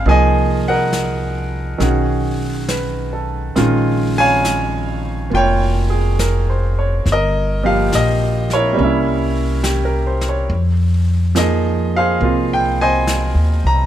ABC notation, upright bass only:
X:1
M:4/4
L:1/8
Q:"Swing" 1/4=69
K:Bbdor
V:1 name="Upright bass" clef=bass
C,,4 =B,,,4 | B,,,4 F,,,4 | G,,,2 B,,,2 C,,4 | F,,4 C,,2- (3C,, E,, C,, |]